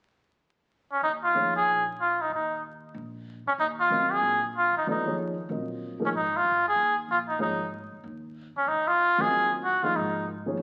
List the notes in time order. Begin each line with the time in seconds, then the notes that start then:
0.92 C#4
1.02 D#2 D#4
1.24 F4
1.34 F3 A#3 D#4 G#4 C#5
1.56 G#4
1.66 A#1
2.01 F4
2.21 D#4
2.30 D#2
2.35 D#4
2.94 A#1
3.46 C#4, muted upright bass stroke
3.58 D#2 D#4
3.80 F4
3.90 F#3 C4 F4 A#4 D#5
4.12 G#4
4.21 A#1
4.56 F4
4.72 E2
4.77 D#4
4.84 D#2 F#3 B3
4.88 D#4 E4 A4 D5
5.06 F3 A#3 D#4 G#4 C#5
5.49 A#1 F#3 C4 F4 A#4 D#5
6.00 F3 A#3 D#4 G#4 A#4
6.05 C#4
6.13 G#1 D#4
6.37 F4
6.45 G1
6.68 G#4
6.76 D#2
7.08 A#1 F4
7.28 D#4
7.39 G#1 F3 A#3 D#4 G#4 C#5
7.92 muted upright bass stroke
8.04 D#2
8.55 C#4, muted upright bass stroke
8.66 C#2 D#4
8.88 F4
9.18 F#3 C4 F4 G#4 A#4 D#5
9.31 D#2
9.64 F#4
9.82 F3 A#3 D#4 F4 G#4 D#5, muted upright bass stroke
9.94 G#1 D#4
10.46 F3 A#3 D#4 G#4 C#5
10.57 C#2